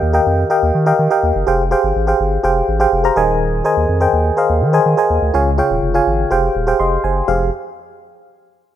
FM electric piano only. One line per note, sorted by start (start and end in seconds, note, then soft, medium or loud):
0.00 0.22 D#3 medium
0.00 0.13 G4 medium
0.00 0.14 A#4 medium
0.00 0.14 D#5 medium
0.00 0.14 F5 medium
0.00 0.15 G5 loud
0.13 0.37 G4 medium
0.13 0.37 A#4 medium
0.13 0.38 D#5 medium
0.13 0.38 F5 medium
0.13 0.38 G5 medium
0.50 0.74 G4 medium
0.50 0.74 A#4 medium
0.50 0.74 D#5 medium
0.50 0.74 F5 medium
0.50 0.74 G5 medium
0.86 1.02 G4 medium
0.86 1.02 A#4 medium
0.86 1.02 D#5 medium
0.86 1.02 F5 medium
0.86 1.03 G5 loud
1.10 1.34 G4 medium
1.10 1.34 A#4 medium
1.10 1.34 D#5 medium
1.10 1.35 F5 medium
1.10 1.35 G5 medium
1.47 1.63 G4 medium
1.47 1.63 G#4 medium
1.47 1.63 C5 medium
1.47 1.63 F5 medium
1.47 1.63 G5 medium
1.71 1.95 G4 medium
1.71 1.95 G#4 medium
1.71 1.95 C5 medium
1.71 1.95 F5 medium
1.71 1.95 G5 loud
2.07 2.31 G4 medium
2.07 2.31 G#4 medium
2.07 2.31 C5 medium
2.07 2.31 F5 medium
2.07 2.32 G5 medium
2.43 2.67 G4 medium
2.43 2.67 G#4 medium
2.43 2.67 C5 medium
2.43 2.68 F5 medium
2.43 2.68 G5 loud
2.80 2.96 G4 medium
2.80 2.96 G#4 medium
2.80 2.96 C5 medium
2.80 2.96 F5 medium
2.80 2.96 G5 loud
3.04 3.16 G4 medium
3.04 3.15 G#4 medium
3.04 3.15 C5 medium
3.04 3.17 F5 medium
3.04 3.17 A#5 medium
3.16 3.85 D#3 medium
3.16 3.55 G#4 medium
3.16 3.55 A#4 medium
3.16 3.55 C5 medium
3.16 3.55 D#5 medium
3.16 3.56 G#5 loud
3.64 3.88 G#4 medium
3.64 3.88 A#4 medium
3.64 3.88 C5 medium
3.64 3.89 D#5 medium
3.64 3.89 G#5 loud
4.00 4.24 G#4 medium
4.00 4.24 A#4 medium
4.00 4.25 C5 medium
4.00 4.25 D#5 medium
4.00 4.25 G5 medium
4.37 4.61 G#4 medium
4.37 4.61 A#4 medium
4.37 4.61 C5 medium
4.37 4.61 D#5 medium
4.37 4.61 F5 medium
4.73 4.89 G#4 medium
4.73 4.89 A#4 medium
4.73 4.89 C5 medium
4.73 4.89 D#5 medium
4.73 4.90 G#5 loud
4.97 5.21 G#4 medium
4.97 5.21 A#4 medium
4.97 5.21 C5 medium
4.97 5.22 D#5 medium
4.97 5.22 G#5 medium
5.34 6.03 C#3 medium
5.34 5.50 F4 medium
5.34 5.50 G#4 medium
5.34 5.50 C#5 medium
5.34 5.50 F5 medium
5.34 5.50 G#5 medium
5.58 5.82 F4 medium
5.58 5.82 G#4 medium
5.58 5.82 C#5 medium
5.58 5.82 F5 medium
5.58 5.82 G5 medium
5.94 6.18 F4 medium
5.94 6.18 G#4 medium
5.94 6.18 C#5 medium
5.94 6.18 F5 medium
5.94 6.19 G#5 medium
6.31 6.54 G4 medium
6.31 6.54 G#4 medium
6.31 6.55 C5 medium
6.31 6.55 F5 medium
6.31 6.55 G5 loud
6.67 6.83 G4 medium
6.67 6.83 G#4 medium
6.67 6.79 C5 medium
6.67 6.80 F5 medium
6.67 6.80 G5 medium
6.80 7.03 D#5 medium
6.80 7.02 C6 medium
7.04 7.27 C5 medium
7.04 7.50 G#5 medium
7.28 7.50 F2 medium
7.28 7.50 G4 medium
7.28 7.50 G#4 medium
7.28 7.50 C5 medium
7.28 7.50 F5 medium